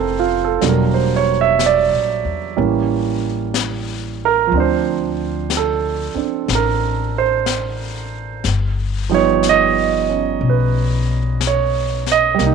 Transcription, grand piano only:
0.00 0.63 D3 soft
0.00 0.63 F3 soft
0.00 0.63 A3 soft
0.00 0.28 C4 soft
0.00 0.64 E4 medium
0.00 0.19 F4 medium
0.00 0.64 G4 medium
0.00 0.45 A4 medium
0.00 0.65 A#4 medium
0.00 0.65 C5 medium
0.19 0.40 F4 medium
0.45 0.61 A4 medium
0.61 2.57 F#3 soft
0.61 2.55 G3 soft
0.61 2.55 A#3 soft
0.61 2.58 D4 medium
0.68 0.97 A#4 medium
0.94 1.25 C5 medium
1.16 1.37 C#5 medium
1.41 1.58 E5 medium
1.66 2.03 D5 medium
2.56 4.52 E3 medium
2.56 4.52 G3 soft
2.56 4.52 A#3 medium
2.56 4.52 C#4 medium
4.25 4.55 A#4 medium
4.47 8.42 F3 medium
4.54 6.13 C4 medium
4.54 6.16 D4 medium
4.60 5.50 C5 medium
5.57 6.48 A4 medium
6.15 8.44 C4 soft
6.15 8.46 D4 soft
6.55 7.14 A#4 medium
7.18 7.48 C5 medium
9.09 12.39 F3 medium
9.09 12.33 G3 medium
9.09 12.40 B3 medium
9.09 12.40 D#4 medium
9.14 9.45 C#5 medium
9.49 10.41 D#5 medium
10.09 12.40 C#4 soft
10.49 11.41 B4 medium
11.47 12.07 C#5 medium
12.12 12.41 D#5 medium
12.34 12.55 G3 medium
12.34 12.55 A#3 medium
12.46 12.55 D#4 medium

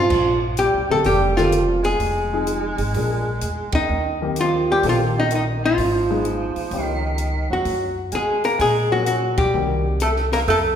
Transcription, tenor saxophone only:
0.00 0.39 F3 medium
0.58 0.88 G3 medium
0.89 1.04 A3 medium
1.06 1.35 G3 medium
1.36 1.80 F3 medium
1.83 3.69 G#3 medium
3.72 4.17 D#3 medium
4.38 4.66 F3 medium
4.70 4.84 G3 medium
4.86 5.00 F3 medium
5.17 5.31 D#3 medium
5.31 5.45 D#3 medium
5.64 6.84 F3 medium
6.84 7.48 D#3 medium
7.50 7.94 F#3 medium
8.12 8.42 G#3 medium
8.44 8.58 A#3 medium
8.58 8.88 G#3 medium
8.91 9.04 F#3 medium
9.05 9.35 F#3 medium
9.37 9.82 G3 medium
10.02 10.16 A3 medium
10.33 10.40 A#3 medium
10.48 10.62 A3 medium

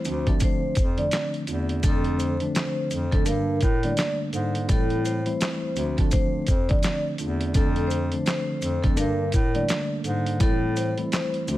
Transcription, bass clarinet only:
0.05 0.37 D2 loud
0.77 1.08 F2 loud
1.48 1.80 E2 loud
1.84 2.47 F2 loud
2.91 3.22 F2 medium
3.27 3.58 G2 loud
3.63 3.94 A2 loud
4.34 4.65 G#2 loud
4.69 5.33 A2 loud
5.76 6.08 D2 loud
6.48 6.80 F2 medium
7.19 7.51 E2 loud
7.55 8.18 F2 loud
8.62 8.94 F2 loud
8.98 9.30 G2 loud
9.34 9.65 A2 loud
10.05 10.37 G#2 loud
10.41 11.04 A2 loud
11.48 11.58 D2 loud

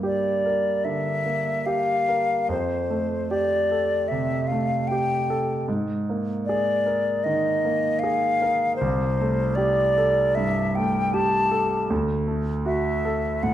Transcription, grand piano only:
0.00 0.82 G2 soft
0.00 0.29 A#3 soft
0.00 0.69 G4 soft
0.46 1.09 A#4 soft
0.85 1.50 D3 soft
1.26 1.93 A#3 soft
1.66 2.34 G4 soft
2.09 2.50 A#4 soft
2.49 4.05 F2 soft
2.90 3.54 A3 soft
3.31 3.95 G4 soft
3.71 4.35 A4 soft
4.12 4.75 C3 soft
4.51 5.14 A3 soft
4.91 5.53 G4 soft
5.30 5.68 A4 soft
5.68 7.21 G#2 medium
6.09 6.71 A#3 soft
6.49 7.10 G#4 soft
6.86 7.47 A#4 soft
7.26 7.86 D#3 soft
7.65 8.25 A#3 soft
8.03 8.64 G#4 soft
8.42 8.80 A#4 soft
8.81 10.34 C2 medium
9.21 9.82 A3 soft
9.57 10.21 G4 soft
9.98 10.61 A4 soft
10.37 10.99 G2 soft
10.78 11.38 A3 soft
11.14 11.75 G4 soft
11.51 11.90 A4 medium
11.90 13.40 D2 medium
12.27 12.89 A3 soft
12.66 13.28 F#4 soft
13.05 13.54 A4 medium
13.43 13.54 A2 soft

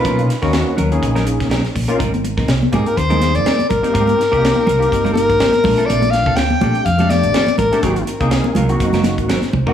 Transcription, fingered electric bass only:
0.05 0.24 B2 medium
0.43 0.61 D#2 medium
0.79 0.97 D#2 medium
1.02 1.41 A#1 medium
1.41 1.59 B1 medium
1.75 1.85 A#1 medium
2.00 2.40 G#1 medium
2.38 2.65 C2 medium
2.73 2.83 G#2 medium
2.97 3.37 D#2 medium
3.36 3.44 G1 medium
3.60 muted fingered electric bass stroke soft
3.71 3.80 G#1 medium
3.95 4.13 G#2 medium
4.33 4.51 C2 medium
4.68 4.86 C2 medium
4.92 5.30 G1 medium
5.30 5.48 G#1 medium
5.65 5.75 A#1 medium
5.90 6.26 A#1 medium
6.26 6.53 D2 medium
6.62 6.72 A#2 medium
6.86 7.25 F2 medium
7.23 7.32 A1 medium
7.48 muted fingered electric bass stroke soft
7.59 7.69 A1 medium
7.83 8.02 G#1 medium
8.21 8.39 C2 medium
8.56 8.75 C2 medium
8.80 9.18 F#1 medium
9.18 9.37 G#1 medium
9.54 9.64 C2 medium

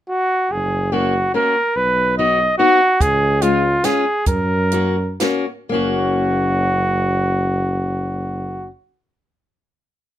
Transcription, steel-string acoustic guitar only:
0.92 1.13 A#3 medium
0.92 1.13 C#4 medium
0.92 1.13 F#4 medium
1.34 1.55 A#3 medium
1.34 1.54 C#4 medium
1.34 1.55 F#4 medium
2.19 2.38 B3 soft
2.19 2.38 D#4 medium
2.19 2.38 F#4 medium
2.59 2.79 B3 medium
2.59 2.79 D#4 soft
2.59 2.79 F#4 medium
3.42 3.62 G#3 medium
3.42 3.62 C#4 medium
3.42 3.62 F4 medium
3.84 4.04 G#3 medium
3.84 4.04 C#4 medium
3.84 4.04 F4 medium
4.72 4.95 A#3 medium
4.72 4.95 C#4 medium
4.72 4.96 F#4 medium
5.21 5.44 A#3 medium
5.21 5.45 C#4 medium
5.21 5.45 F#4 medium
5.69 8.66 A#3 medium
5.69 8.69 C#4 medium
5.74 8.70 F#4 medium

